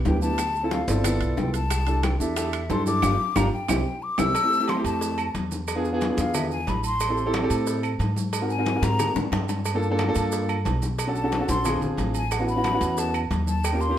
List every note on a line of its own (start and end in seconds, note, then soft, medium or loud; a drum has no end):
0.05 0.82 D2 medium
0.05 0.17 B3 medium
0.05 0.17 D4 medium
0.05 0.17 E4 medium
0.05 0.18 G4 medium
0.05 0.21 G5 medium
0.05 high bongo soft
0.05 low bongo medium
0.05 high conga medium
0.05 low timbale medium
0.05 maracas soft
0.21 0.38 B3 medium
0.21 0.39 D4 medium
0.21 0.39 E4 medium
0.21 0.39 G4 medium
0.21 0.74 A5 loud
0.21 high bongo soft
0.21 high conga medium
0.21 maracas medium
0.38 high bongo medium
0.38 high conga soft
0.38 high timbale medium
0.38 claves medium
0.38 maracas medium
0.55 high bongo soft
0.55 high conga soft
0.55 maracas soft
0.63 0.80 C4 medium
0.63 0.81 E4 medium
0.63 0.81 F4 medium
0.63 0.81 A4 medium
0.71 0.90 F5 medium
0.71 high bongo medium
0.71 high conga loud
0.71 high timbale medium
0.71 maracas soft
0.88 1.19 G1 loud
0.88 1.04 C4 medium
0.88 1.03 E4 medium
0.88 1.03 F4 medium
0.88 1.04 A4 medium
0.88 1.39 D5 medium
0.88 high bongo soft
0.88 high conga loud
0.88 maracas medium
1.04 1.57 B3 medium
1.04 1.57 E4 medium
1.04 1.58 F4 medium
1.04 1.58 A4 loud
1.04 high bongo medium
1.04 high conga soft
1.04 low conga medium
1.04 high timbale loud
1.04 claves medium
1.04 maracas loud
1.20 1.36 B1 medium
1.20 high timbale medium
1.20 maracas soft
1.37 2.15 C2 medium
1.37 1.54 G5 medium
1.37 high bongo soft
1.37 low bongo medium
1.37 high conga loud
1.37 maracas soft
1.54 2.05 A5 loud
1.54 high bongo soft
1.54 high timbale medium
1.54 maracas medium
1.70 high bongo medium
1.70 high conga soft
1.70 high timbale loud
1.70 claves medium
1.70 maracas medium
1.86 2.10 D4 medium
1.86 2.10 E4 medium
1.86 2.11 G4 medium
1.86 2.11 A4 medium
1.86 high bongo soft
1.86 high conga soft
1.86 high timbale medium
1.86 maracas soft
2.03 2.19 G5 medium
2.03 high bongo medium
2.03 high conga loud
2.03 high timbale medium
2.03 claves medium
2.03 maracas soft
2.20 2.66 E2 medium
2.20 2.32 D4 medium
2.20 2.32 E4 medium
2.20 2.32 G4 medium
2.20 2.32 A4 medium
2.20 2.72 E5 medium
2.20 high bongo soft
2.20 high conga soft
2.20 maracas medium
2.36 2.60 D4 medium
2.36 2.60 E4 medium
2.36 2.60 G4 medium
2.36 2.60 A4 medium
2.36 high bongo medium
2.36 high conga soft
2.36 high timbale medium
2.36 maracas medium
2.53 high conga soft
2.53 high timbale loud
2.53 claves medium
2.53 maracas soft
2.70 3.01 G2 medium
2.70 2.81 D4 medium
2.70 2.81 E4 medium
2.70 2.82 G4 medium
2.70 2.82 A4 loud
2.70 2.86 C6 medium
2.70 high bongo soft
2.70 low bongo medium
2.70 high conga loud
2.70 low timbale medium
2.70 maracas soft
2.86 3.02 D4 medium
2.86 3.03 E4 medium
2.86 3.01 G4 medium
2.86 3.03 A4 medium
2.86 3.38 D6 loud
2.86 high bongo soft
2.86 high conga medium
2.86 maracas medium
3.02 3.15 G1 loud
3.02 3.14 D4 loud
3.02 3.14 F4 loud
3.02 3.14 G4 loud
3.02 low bongo loud
3.02 high conga loud
3.02 high timbale loud
3.02 claves loud
3.02 maracas medium
3.36 3.48 G1 loud
3.36 3.47 D4 loud
3.36 3.47 F4 loud
3.36 3.47 G4 loud
3.36 3.52 A#5 loud
3.36 low bongo loud
3.36 high conga loud
3.36 high timbale medium
3.36 claves loud
3.36 maracas loud
3.53 4.04 G5 medium
3.68 3.81 C2 medium
3.68 3.80 C4 loud
3.68 3.80 E4 loud
3.68 3.80 G4 loud
3.68 low bongo loud
3.68 high conga loud
3.68 high timbale loud
3.68 claves loud
3.68 maracas loud
4.03 4.20 D6 loud
4.18 4.31 C2 medium
4.18 4.29 C4 medium
4.18 4.29 E4 loud
4.18 4.29 G4 loud
4.18 4.71 E6 loud
4.18 low bongo loud
4.18 high conga loud
4.18 high timbale loud
4.18 claves loud
4.18 maracas medium
4.35 cowbell loud
4.35 high conga soft
4.35 low agogo loud
4.35 claves medium
4.35 maracas medium
4.43 4.55 A3 medium
4.43 4.55 C4 medium
4.43 4.55 E4 medium
4.43 4.56 G4 medium
4.53 high conga soft
4.53 maracas soft
4.60 4.72 A3 medium
4.60 4.72 C4 medium
4.60 4.72 E4 medium
4.60 4.72 G4 medium
4.68 4.85 C6 loud
4.68 cowbell medium
4.68 high conga loud
4.68 low agogo loud
4.68 claves medium
4.68 maracas soft
4.76 5.23 A3 medium
4.76 5.23 C4 medium
4.76 5.24 E4 medium
4.76 5.24 G4 loud
4.84 5.31 F2 medium
4.84 5.31 A5 loud
4.84 cowbell medium
4.84 low agogo medium
4.84 maracas medium
5.01 cowbell loud
5.01 high conga soft
5.01 maracas medium
5.18 high conga soft
5.18 low agogo loud
5.18 claves medium
5.18 maracas soft
5.34 6.12 E2 medium
5.34 cowbell medium
5.34 high conga medium
5.34 low agogo medium
5.34 maracas soft
5.51 high conga medium
5.51 maracas medium
5.68 cowbell loud
5.68 high conga soft
5.68 low agogo loud
5.68 claves medium
5.68 maracas medium
5.76 5.88 B3 medium
5.76 5.88 D4 medium
5.76 5.88 F4 medium
5.76 5.88 G#4 loud
5.85 high conga soft
5.85 maracas soft
5.93 6.04 B3 medium
5.93 6.05 D4 medium
5.93 6.05 F4 medium
5.93 6.05 G#4 loud
6.01 cowbell medium
6.01 high conga loud
6.01 low agogo medium
6.01 maracas soft
6.09 6.56 B3 medium
6.09 6.56 D4 medium
6.09 6.56 F4 medium
6.09 6.56 G#4 medium
6.17 6.64 E2 loud
6.17 6.37 F5 medium
6.17 high conga loud
6.17 maracas medium
6.34 6.50 E5 medium
6.34 cowbell loud
6.34 high conga soft
6.34 low conga medium
6.34 low agogo loud
6.34 claves medium
6.34 maracas medium
6.51 6.70 G#5 medium
6.51 high conga soft
6.51 maracas soft
6.67 7.44 A1 medium
6.67 6.85 B5 medium
6.67 cowbell medium
6.67 high conga loud
6.67 low timbale medium
6.67 low agogo medium
6.67 maracas soft
6.84 7.31 C6 loud
6.84 low agogo medium
6.84 maracas medium
7.00 cowbell loud
7.00 high conga soft
7.00 low agogo loud
7.00 claves medium
7.00 maracas medium
7.09 7.20 C4 medium
7.09 7.21 E4 medium
7.09 7.21 G4 medium
7.09 7.21 A4 medium
7.17 high conga soft
7.17 maracas soft
7.26 7.37 C4 medium
7.26 7.37 E4 medium
7.26 7.38 G4 medium
7.26 7.38 A4 loud
7.33 cowbell medium
7.33 high conga loud
7.33 low agogo medium
7.33 claves medium
7.33 maracas soft
7.42 7.89 C4 loud
7.42 7.89 E4 medium
7.42 7.89 G4 medium
7.42 7.89 A4 loud
7.50 7.96 A2 loud
7.50 cowbell medium
7.50 high conga soft
7.50 low agogo medium
7.50 maracas medium
7.67 cowbell loud
7.67 high conga soft
7.67 maracas medium
7.83 high conga soft
7.83 low agogo loud
7.83 claves medium
7.83 maracas soft
7.99 8.77 G#2 medium
7.99 cowbell medium
7.99 high conga medium
7.99 low agogo medium
7.99 maracas soft
8.16 high conga medium
8.16 maracas medium
8.33 cowbell loud
8.33 high conga soft
8.33 low agogo loud
8.33 claves medium
8.33 maracas medium
8.41 8.53 C4 medium
8.41 8.53 D#4 medium
8.41 8.54 F#4 medium
8.41 8.54 A#4 medium
8.49 8.85 G#5 loud
8.49 high conga soft
8.49 maracas soft
8.58 8.70 C4 medium
8.58 8.70 D#4 medium
8.58 8.70 F#4 medium
8.58 8.71 A#4 medium
8.66 cowbell medium
8.66 high conga loud
8.66 low agogo medium
8.66 maracas soft
8.75 9.21 C4 medium
8.75 9.21 D#4 medium
8.75 9.22 F#4 medium
8.75 9.22 A#4 medium
8.82 9.13 G#2 medium
8.82 9.16 A#5 loud
8.82 high bongo medium
8.82 high conga loud
8.82 maracas medium
8.99 cowbell loud
8.99 high bongo medium
8.99 high conga soft
8.99 low conga medium
8.99 low agogo loud
8.99 claves medium
8.99 maracas loud
9.15 9.31 G#2 medium
9.15 low bongo loud
9.15 high conga soft
9.15 low conga medium
9.15 maracas soft
9.32 10.10 G2 loud
9.32 cowbell medium
9.32 low bongo loud
9.32 high conga loud
9.32 low agogo loud
9.32 maracas soft
9.49 low bongo medium
9.49 low agogo medium
9.49 maracas medium
9.65 cowbell loud
9.65 high conga soft
9.65 low agogo medium
9.65 claves medium
9.65 maracas medium
9.74 9.86 A#3 medium
9.74 9.86 D4 medium
9.74 9.86 F4 medium
9.74 9.87 A4 loud
9.82 high conga soft
9.82 maracas soft
9.90 10.02 A#3 loud
9.90 10.03 D4 medium
9.90 10.03 F4 medium
9.90 10.03 A4 loud
9.98 cowbell medium
9.98 high conga loud
9.98 low agogo loud
9.98 claves medium
9.98 maracas soft
10.07 10.54 A#3 loud
10.07 10.54 D4 medium
10.07 10.54 F4 medium
10.07 10.55 A4 loud
10.15 10.62 G2 loud
10.15 cowbell medium
10.15 low agogo medium
10.15 maracas medium
10.32 cowbell loud
10.32 high conga soft
10.32 maracas medium
10.48 high conga soft
10.48 low agogo loud
10.48 claves medium
10.48 maracas soft
10.65 11.43 B1 medium
10.65 cowbell medium
10.65 high conga loud
10.65 low timbale medium
10.65 low agogo medium
10.65 maracas soft
10.82 high conga medium
10.82 maracas medium
10.99 cowbell loud
10.99 high conga soft
10.99 low agogo loud
10.99 claves medium
10.99 maracas medium
11.07 11.19 C#4 medium
11.07 11.19 D4 medium
11.07 11.19 F#4 medium
11.07 11.19 A4 medium
11.15 11.47 A5 loud
11.15 high conga soft
11.15 maracas soft
11.23 11.35 C#4 medium
11.23 11.35 D4 medium
11.23 11.36 F#4 medium
11.23 11.36 A4 medium
11.32 cowbell medium
11.32 high conga loud
11.32 low agogo medium
11.32 maracas soft
11.40 11.65 C#4 medium
11.40 11.63 D4 medium
11.40 11.66 F#4 medium
11.40 11.66 A4 medium
11.48 11.80 A#1 loud
11.48 11.80 C6 loud
11.48 high conga loud
11.48 maracas medium
11.64 12.18 C4 medium
11.64 12.18 D4 medium
11.64 12.19 F4 medium
11.64 12.19 G#4 medium
11.64 cowbell loud
11.64 high conga soft
11.64 low conga medium
11.64 low agogo loud
11.64 claves medium
11.64 maracas medium
11.81 11.97 A#1 medium
11.81 high conga soft
11.81 low conga medium
11.81 maracas soft
11.97 12.75 A1 loud
11.97 cowbell medium
11.97 high conga medium
11.97 low agogo medium
11.97 maracas soft
12.14 12.34 G#5 loud
12.14 low agogo medium
12.14 maracas medium
12.31 12.47 F#5 medium
12.31 cowbell loud
12.31 high conga soft
12.31 low agogo loud
12.31 claves medium
12.31 maracas medium
12.39 12.51 B3 medium
12.39 12.51 C#4 medium
12.39 12.52 E4 medium
12.39 12.52 F#4 loud
12.48 13.01 B5 loud
12.48 high conga soft
12.48 maracas soft
12.56 12.68 B3 medium
12.56 12.68 C#4 medium
12.56 12.69 E4 medium
12.56 12.69 F#4 medium
12.64 cowbell medium
12.64 high conga loud
12.64 low agogo loud
12.64 claves medium
12.64 maracas soft
12.73 13.20 B3 medium
12.73 13.20 C#4 medium
12.73 13.20 E4 medium
12.73 13.20 F#4 loud
12.81 13.27 E2 loud
12.81 cowbell medium
12.81 high conga soft
12.81 low agogo medium
12.81 maracas medium
12.97 13.15 A5 loud
12.97 cowbell loud
12.97 high conga soft
12.97 maracas loud
13.14 high conga soft
13.14 low agogo loud
13.14 claves medium
13.14 maracas soft
13.31 13.98 D#2 loud
13.31 cowbell medium
13.31 high conga loud
13.31 low agogo medium
13.31 maracas soft
13.47 13.67 A5 medium
13.47 high conga medium
13.47 maracas medium
13.64 13.82 G5 medium
13.64 cowbell loud
13.64 high conga soft
13.64 low agogo loud
13.64 claves medium
13.64 maracas medium
13.72 13.84 A#3 medium
13.72 13.85 C#4 medium
13.72 13.85 F4 medium
13.72 13.85 G4 medium
13.81 13.98 C6 loud
13.81 high conga soft
13.81 maracas soft
13.89 13.98 A#3 medium
13.89 13.98 C#4 medium
13.89 13.98 F4 medium
13.89 13.98 G4 medium